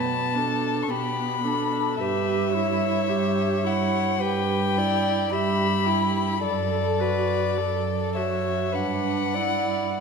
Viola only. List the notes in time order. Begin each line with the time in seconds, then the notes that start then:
Already playing: B3
0.35 D4
0.89 B3
1.45 D4
2.00 G4
2.55 E4
3.09 G4
3.65 E4
4.21 G4
4.77 E4
5.32 G4
5.86 E4
6.42 A4
6.99 F#4
7.59 A4
8.17 F#4
8.75 D4
9.36 E4